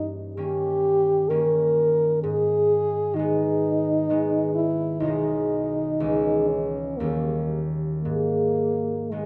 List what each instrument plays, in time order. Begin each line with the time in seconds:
Already playing: harp G2 A#3 C#4
0.36 harp D#3 A#3 C#4, french horn G4
1.29 harp D#3 A#3 C#4, french horn A#4
2.23 harp G#2, french horn G#4
3.14 harp D#3 G#3, french horn D#4
3.19 harp B3
4.09 harp D#3 G#3 B3
4.55 french horn E4
5.00 harp B1 D#3, french horn D#4
5.04 harp G#3 D#4
6.00 harp C#2 E3 G#3 C#4
6.48 french horn C#4
6.97 harp D#2 D#3 G3, french horn A#3
7.02 harp C#4
8.02 harp G#2, french horn A#3
9.10 harp D#3 G#3 B3, french horn G#3